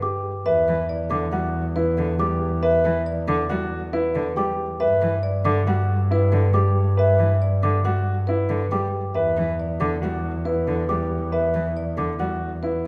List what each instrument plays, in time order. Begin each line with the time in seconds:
Already playing: double bass G2
0.02 grand piano G4, celesta D6
0.46 double bass E2, grand piano B4, marimba E5
0.68 cello E3
0.89 marimba D5
1.10 cello D3, celesta D6
1.32 cello G3, grand piano F#4, marimba F#5
1.76 grand piano E4, marimba B4
1.98 cello D3
2.19 cello G3, grand piano G4, marimba G5, celesta D6
2.63 grand piano B4, marimba E5
2.85 cello E3
3.06 marimba D5
3.28 cello D3, celesta D6
3.50 cello G3, grand piano F#4, marimba F#5
3.93 grand piano E4, marimba B4
4.15 cello D3
4.36 cello G3, grand piano G4, marimba G5, celesta D6
4.80 double bass G2, grand piano B4, marimba E5
5.02 cello E3
5.23 marimba D5
5.45 cello D3, celesta D6
5.67 cello G3, grand piano F#4, marimba F#5
6.11 grand piano E4, marimba B4
6.32 cello D3
6.54 cello G3, grand piano G4, marimba G5, celesta D6
6.97 grand piano B4, marimba E5
7.19 cello E3
7.42 marimba D5
7.63 cello D3, celesta D6
7.85 cello G3, grand piano F#4, marimba F#5
8.27 grand piano E4, marimba B4
8.50 cello D3
8.71 cello G3, grand piano G4, marimba G5, celesta D6
9.15 double bass E2, grand piano B4, marimba E5
9.37 cello E3
9.60 marimba D5
9.80 cello D3, celesta D6
10.02 cello G3, grand piano F#4, marimba F#5
10.45 grand piano E4, marimba B4
10.68 cello D3
10.89 cello G3, grand piano G4, marimba G5, celesta D6
11.32 grand piano B4, marimba E5
11.54 cello E3
11.77 marimba D5
11.98 cello D3, celesta D6
12.20 cello G3, grand piano F#4, marimba F#5
12.63 grand piano E4, marimba B4